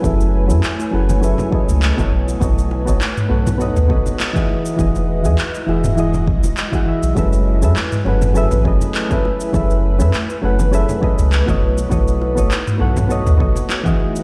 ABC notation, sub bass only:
X:1
M:4/4
L:1/16
Q:"Swing 16ths" 1/4=101
K:F#dor
V:1 name="Sub bass" clef=bass
F,,,3 F,, z2 F,,,3 z2 C,,2 F,,, B,,,2 | B,,,3 F,,, z2 B,,,3 D,, B,,, z4 z | E,,,3 E,, z2 E,,,4 B,,, E,,, z3 B,,, | F,,,3 F,, z2 F,,,3 A,,, F,,, z4 z |
F,,,3 F,, z2 F,,,3 z2 C,,2 F,,, B,,,2 | B,,,3 F,,, z2 B,,,3 D,, B,,, z4 z |]